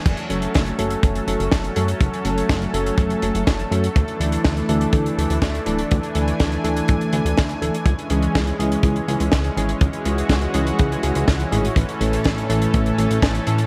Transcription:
0.05 F#1 F#3 A3 C#4 A4, kick, closed hi-hat, crash
0.17 closed hi-hat
0.30 F#1 F#3 A3 C#4 A4, closed hi-hat
0.42 closed hi-hat
0.54 F#1, kick, snare, closed hi-hat
0.66 closed hi-hat
0.79 F#1 F#3 A3 C#4 A4, closed hi-hat
0.90 closed hi-hat
1.03 F#1, kick, closed hi-hat
1.15 closed hi-hat
1.27 F#1 F#3 A3 C#4 A4, closed hi-hat
1.40 F#1, closed hi-hat
1.51 F#1, kick, snare, closed hi-hat
1.64 closed hi-hat
1.76 F#2 F#3 A3 C#4 A4, closed hi-hat
1.88 closed hi-hat
2.00 F#1, kick, closed hi-hat
2.14 closed hi-hat
2.25 F#1 F#3 A3 C#4 A4, closed hi-hat
2.38 closed hi-hat
2.49 F#1, kick, snare, closed hi-hat
2.62 closed hi-hat
2.74 F#1 F#3 A3 C#4 A4, closed hi-hat
2.86 closed hi-hat
2.98 F#1, kick, closed hi-hat
3.10 closed hi-hat
3.22 F#1 F#3 A3 C#4 A4, closed hi-hat
3.35 F#1, closed hi-hat
3.47 F#1, kick, snare, closed hi-hat
3.59 closed hi-hat
3.71 F#2 F#3 A3 C#4 A4, closed hi-hat
3.84 closed hi-hat
3.96 D2 E3 D4, kick, closed hi-hat
4.08 closed hi-hat
4.20 D2 E3 A3 D4 A4, closed hi-hat
4.32 closed hi-hat
4.45 D2, kick, snare, closed hi-hat
4.57 closed hi-hat
4.69 D2 E3 A3 D4 A4, closed hi-hat
4.81 closed hi-hat
4.93 D2, kick, closed hi-hat
5.06 closed hi-hat
5.18 D2 E3 A3 D4 A4, closed hi-hat
5.30 D2, closed hi-hat
5.42 D2, kick, snare, closed hi-hat
5.55 closed hi-hat
5.66 D1 E3 A3 D4 A4, closed hi-hat
5.79 closed hi-hat
5.91 D2 G#5, kick, closed hi-hat
6.03 closed hi-hat
6.15 D2 E3 A3 D4 A4, closed hi-hat
6.28 closed hi-hat
6.40 D2, kick, snare, closed hi-hat
6.52 closed hi-hat
6.64 D2 E3 A3 D4 A4, closed hi-hat
6.77 closed hi-hat
6.88 D1, kick, closed hi-hat
7.01 closed hi-hat
7.13 D2 E3 A3 D4 A4, closed hi-hat
7.25 D2, closed hi-hat
7.37 D2, kick, snare, closed hi-hat
7.49 closed hi-hat
7.62 D1 E3 A3 D4 A4, closed hi-hat
7.74 closed hi-hat
7.86 C#2 E3 G#3 C#4, kick, closed hi-hat
7.99 closed hi-hat
8.10 C#2 E3 G#3 C#4 G#4, closed hi-hat
8.22 closed hi-hat
8.35 C#2, kick, snare, closed hi-hat
8.47 closed hi-hat
8.59 C#2 E3 G#3 C#4 G#4, closed hi-hat
8.72 closed hi-hat
8.83 C#2, kick, closed hi-hat
8.96 closed hi-hat
9.08 C#2 E3 G#3 C#4 G#4, closed hi-hat
9.20 C#2, closed hi-hat
9.32 C#2, kick, snare, closed hi-hat
9.44 closed hi-hat
9.57 G#1 E3 G#3 C#4 G#4, closed hi-hat
9.69 closed hi-hat
9.81 C#2 F#4, kick, closed hi-hat
9.93 closed hi-hat
10.05 C#2 E3 G#3 C#4 G#4, closed hi-hat
10.18 closed hi-hat
10.29 C#2, kick, snare, closed hi-hat
10.41 closed hi-hat
10.54 C#2 E3 G#3 C#4 G#4, closed hi-hat
10.67 closed hi-hat
10.79 C#2, kick, closed hi-hat
10.92 closed hi-hat
11.03 C#2 E3 G#3 C#4 G#4, closed hi-hat
11.15 C#2, closed hi-hat
11.28 C#2, kick, snare, closed hi-hat
11.40 closed hi-hat
11.52 G#1 A2 E3 G#3 C#4 G#4, closed hi-hat
11.65 closed hi-hat
11.76 A1 A3 A4, kick, closed hi-hat
11.89 closed hi-hat
12.01 A1 A2 E3 A3 C#4 A4, closed hi-hat
12.13 closed hi-hat
12.24 A1, kick, snare, closed hi-hat
12.38 closed hi-hat
12.50 A1 A2 E3 A3 C#4 A4, closed hi-hat
12.62 closed hi-hat
12.74 A1, kick, closed hi-hat
12.86 closed hi-hat
12.98 A1 A2 E3 A3 C#4 A4, closed hi-hat
13.11 A1, closed hi-hat
13.22 A1, kick, snare, closed hi-hat
13.35 closed hi-hat
13.47 A2 E3 A3 C#4 A4, closed hi-hat
13.58 closed hi-hat

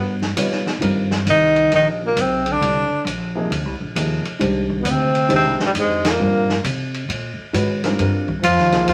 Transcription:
Already playing: G2 B2 B3
0.22 snare
0.36 B2 G3 B3 D#4 F4 C#5, hi-hat pedal, ride
0.52 snare
0.66 snare
0.81 G2 D#3 G3 C4 F4 A#4, ride
1.11 snare
1.26 C2 D#3 D#4, hi-hat pedal, ride
1.56 ride
1.72 A#1 D#3 D#4, ride
2.03 A#2 A#3
2.16 B1 C3, hi-hat pedal, ride
2.21 C4
2.46 D3, ride
2.53 D4
2.61 C2, ride
2.90 muted upright bass stroke
3.05 A#1, hi-hat pedal, ride
3.35 C3 F3 A#3 D#4 G#4
3.50 D2, ride
3.65 C2
3.80 A#1
3.95 D#2 C3 F3 A#3 D#4 G#4, hi-hat pedal, ride
4.25 muted upright bass stroke, ride
4.39 C2 D#3 G#3 D4 G4 C5, ride
4.70 kick
4.80 B2 B3
4.85 D2 C3, hi-hat pedal, ride
4.91 C4
5.15 ride
5.29 D#2 C3 D#3 G#3 D4 G4 C5, ride
5.36 C4
5.45 C2
5.59 A#1 G2, snare
5.66 G3
5.75 F2 G#2, hi-hat pedal, ride
5.81 G#3
6.05 A#2, snare, ride
6.10 A#3
6.19 G2 D3 G3 C4 F4 A#4
6.49 snare
6.64 C3, hi-hat pedal, ride
6.94 ride
7.09 A#2, ride
7.38 muted upright bass stroke
7.53 G#2 D#3 G#3 C#4 F#4 B4, hi-hat pedal, ride
7.84 D3 G3 C4 F4 A#4, snare, ride
7.99 G2 D3 G3 C4 F4 A#4, ride
8.28 kick
8.42 F2 F3 F4, hi-hat pedal, ride
8.57 D#2, snare
8.72 C2 C3 F3 A#3 D#4 G#4, snare, ride
8.85 D#2 F3, ride
8.89 F4

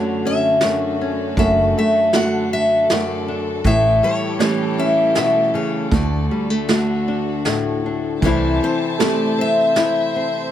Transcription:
Already playing: F#2 D3 A3 C#4 D4 F#4 A4 C#5
0.25 C#4 E5
0.60 F#2 A3, snare, closed hi-hat
1.01 C#4
1.37 F#1 F#2 A3 E5, kick, closed hi-hat
1.78 A3 E5
2.13 D3 A3 F#4 F#5, snare, closed hi-hat
2.53 D4 E5
2.89 F#2 A3 D5, snare, closed hi-hat
3.28 D4
3.62 A1 A2 E3 A3 G4, kick, closed hi-hat
3.67 E5
4.03 G3 C#5
4.39 E3 A3 C#4 G4, snare, closed hi-hat
4.78 C#4 E5
5.15 B2 E5, snare, closed hi-hat
5.54 C#3 C#5
5.90 D2 D3 A3 F#4, kick, closed hi-hat
5.94 D5
6.31 G3
6.50 A3
6.68 D3 A3 F#4, snare, closed hi-hat
7.08 D4
7.45 A2 A3, snare, closed hi-hat
7.86 D4
8.21 C2 C3 E3 C5 E5 A5, kick, closed hi-hat
8.25 A3 C4 E4 D5
8.63 C4 C5
8.98 A3 C4 G4 D5, snare, closed hi-hat
9.38 C4 E5
9.75 E4, snare, closed hi-hat
10.16 C4

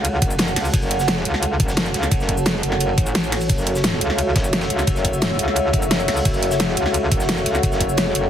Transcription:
Already playing: C#2 F#4 A4 C#5 F#5 A5
0.05 closed hi-hat, ride, shaker
0.22 F#1, kick, closed hi-hat, ride
0.30 ride, shaker
0.38 snare, closed hi-hat, ride
0.48 ride, shaker
0.56 C#2, snare, closed hi-hat, open hi-hat
0.65 ride, shaker
0.74 F#1, kick, closed hi-hat, ride, shaker
0.82 shaker
0.91 closed hi-hat, ride
0.99 snare, shaker
1.08 snare, closed hi-hat, ride, shaker
1.17 snare
1.25 C#2, closed hi-hat, ride
1.33 snare
1.43 closed hi-hat, ride, shaker
1.60 F#1, kick, closed hi-hat, ride
1.68 snare, shaker
1.77 snare, closed hi-hat, ride
1.86 snare, shaker
1.94 C#2, snare, closed hi-hat, ride
2.03 snare, shaker
2.12 F#1, kick, closed hi-hat, ride, shaker
2.20 snare, shaker
2.29 kick, closed hi-hat, ride
2.37 shaker
2.46 snare, closed hi-hat, ride, shaker
2.55 snare
2.63 F#1, closed hi-hat, ride
2.72 snare
2.81 closed hi-hat, ride, shaker
2.98 A1, kick, closed hi-hat, ride, shaker
3.06 ride, shaker
3.15 snare, closed hi-hat, ride
3.24 ride, shaker
3.32 snare, closed hi-hat, open hi-hat
3.41 ride, shaker
3.49 F#1 E5, kick, closed hi-hat, ride, shaker
3.58 shaker
3.67 closed hi-hat, ride
3.75 snare, shaker
3.84 snare, closed hi-hat, ride, shaker
3.93 snare
3.98 C#2 F#5, closed hi-hat, ride
4.09 snare
4.18 closed hi-hat, ride, shaker
4.36 F#1, kick, snare, closed hi-hat, ride
4.44 shaker
4.53 snare, closed hi-hat, ride
4.61 snare, ride, shaker
4.70 C#2, closed hi-hat
4.79 snare, ride, shaker
4.87 F#1, kick, closed hi-hat, ride, shaker
4.96 snare, shaker
5.05 kick, closed hi-hat, ride
5.13 shaker
5.22 snare, closed hi-hat, ride, shaker
5.31 snare
5.39 C#2, closed hi-hat, ride
5.48 snare
5.56 closed hi-hat, ride, shaker
5.73 F#1, kick, closed hi-hat, ride
5.82 ride, shaker
5.91 snare, closed hi-hat, ride
5.99 ride, shaker
6.08 C#2, snare, closed hi-hat, open hi-hat
6.17 ride, shaker
6.25 F#1, kick, closed hi-hat, ride, shaker
6.34 shaker
6.43 closed hi-hat, ride
6.51 snare, shaker
6.60 snare, closed hi-hat, ride, shaker
6.68 snare
6.77 C#2, closed hi-hat, ride
6.86 snare
6.94 closed hi-hat, ride, shaker
7.12 F#1, kick, closed hi-hat, ride
7.20 snare, shaker
7.29 snare, closed hi-hat, ride
7.37 snare, shaker
7.45 C#2, snare, closed hi-hat, ride
7.55 snare, shaker
7.63 F#1, kick, closed hi-hat, ride, shaker
7.72 snare, shaker
7.81 kick, closed hi-hat, ride
7.89 shaker
7.97 snare, closed hi-hat, ride, shaker
8.06 snare
8.15 F#1, closed hi-hat, ride

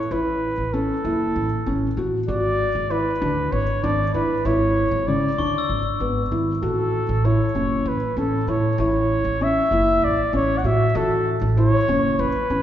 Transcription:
Already playing: C#5
0.11 A1 E4 B4
0.58 A1
0.74 C#4 A4
1.05 F#1 E4
1.36 A1
1.66 A1 C#4
1.97 A1 F#4
2.28 G#1 F#4 D5
2.75 G#1
2.90 E4 B4
3.21 D2 D4
3.52 G#1 C#5
3.84 G#1 D4 D5
4.14 G#2 E4 B4
4.45 G#1 E4 C#5
4.91 G#1
5.08 C#3 D5
5.38 D2 D4 C#6
5.58 E6
5.69 G#1
6.00 G#1 B3
6.31 G#1 E4
6.62 A1 F#4 A4
7.09 A1
7.25 E4 C#5
7.55 F#1 C#4
7.86 A1 B4
8.16 A1 C#4 A4
8.47 A2 E4 C#5
8.78 A1 E4 C#5
9.25 A1
9.41 C#4 E5
9.71 F#1 E4
10.02 A1 D5
10.33 A1 C#4 C#5
10.58 F#5
10.64 A2 F#4 E5
10.95 A1 F#4 A4
11.41 A1
11.57 E4 C#5
11.88 F#1 C#4
12.19 A1 B4
12.50 A1 C#4

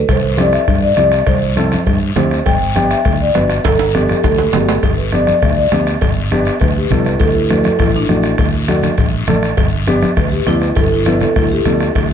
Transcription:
0.09 C2 C5, bombo low, bombo rim, cowbell, long guiro
0.37 C4 E4 G4 D5, bombo rim, high conga, short guiro
0.53 E5, bombo rim, short guiro
0.68 G2, bombo low, bombo rim, cowbell, long guiro
0.82 D5
0.96 C2 C4 E4 G4 D5, bombo rim, high conga, short guiro
1.12 bombo rim, short guiro
1.27 C2 C5, bombo low, bombo rim, cowbell, long guiro
1.56 C4 E4 A4, bombo rim, high conga, short guiro
1.72 bombo rim, high conga, short guiro
1.87 G2, bombo low, bombo rim, cowbell, long guiro
2.16 D2 C4 E4 G4 C5, bombo rim, high conga, low conga, low timbale, short guiro
2.31 bombo rim, short guiro
2.46 G1 G5, bombo low, bombo rim, cowbell, long guiro
2.75 B3 D4 G4 G5, bombo rim, high conga, short guiro
2.90 E5, bombo rim, short guiro
3.05 D2, bombo low, bombo rim, cowbell, long guiro
3.21 D5
3.35 G1 B3 D4 F#4 B4, bombo rim, high conga, low timbale, short guiro
3.50 bombo rim, short guiro
3.64 G1 A4, bombo low, bombo rim, cowbell, high timbale, long guiro
3.79 high timbale
3.94 B3 D4 G4, bombo rim, high conga, short guiro
4.09 G4, bombo rim, high conga, short guiro
4.24 D2 A4, bombo low, bombo rim, cowbell, low timbale, long guiro
4.38 low timbale
4.53 G1 B3 D4 F#4 G4, bombo rim, high conga, low conga, low timbale, short guiro
4.68 bombo rim, low timbale, short guiro
4.83 G1, bombo low, bombo rim, cowbell, long guiro
4.97 B4
5.12 B3 D4 G4 D5, bombo rim, high conga, short guiro
5.26 D5, bombo rim, high conga, short guiro
5.42 D2 E5, bombo low, bombo rim, cowbell, long guiro
5.56 D5
5.72 D2 B3 D4 G4, bombo rim, high conga, low timbale, short guiro
5.87 bombo rim, short guiro
6.01 G1, bombo low, bombo rim, cowbell, long guiro
6.30 B3 D4 G4, bombo rim, high conga, short guiro
6.45 bombo rim, short guiro
6.60 D2 B4, bombo low, bombo rim, cowbell, long guiro
6.77 G4
6.90 C2 B3 D4 E4 A4, bombo low, bombo rim, high conga, low conga, short guiro
7.05 B4, bombo rim, short guiro
7.19 D2 A4, bombo low, bombo rim, cowbell, long guiro
7.34 E4
7.49 A3 D4 F#4 B4, bombo rim, high conga, short guiro
7.64 A4, bombo rim, high conga, short guiro
7.79 A1 E4, bombo low, bombo rim, cowbell, long guiro
7.96 D4
8.08 A1 A3 D4 F#4, bombo rim, high conga, short guiro
8.23 bombo rim, short guiro
8.38 D2, bombo low, bombo rim, cowbell, long guiro
8.68 A3 D4 F#4, bombo rim, high conga, short guiro
8.83 bombo rim, high conga, low conga, short guiro
8.98 A1, bombo low, bombo rim, cowbell, long guiro
9.27 A1 A3 D4 A4, bombo rim, high conga, low conga, short guiro
9.43 bombo rim, short guiro
9.57 G1, bombo low, bombo rim, cowbell, long guiro
9.87 B3 D4 G4, bombo rim, high conga, short guiro
10.02 bombo rim, high conga, short guiro
10.17 D2 B4, bombo low, bombo rim, cowbell, long guiro
10.31 G4
10.46 D2 B3 D4 E4 G4, bombo rim, high conga, short guiro
10.61 B4, bombo rim, short guiro
10.75 G1 A4, bombo low, bombo rim, cowbell, long guiro
10.93 E4
11.06 B3 D4 E4 B4, bombo rim, high conga, short guiro
11.20 A4, bombo rim, low conga, short guiro
11.36 D2 E4, bombo low, bombo rim, cowbell, long guiro
11.52 G4
11.65 D2 B3 D4 A4, bombo rim, high conga, low conga, short guiro
11.80 bombo rim, short guiro
11.95 D2, bombo low, bombo rim, cowbell, long guiro

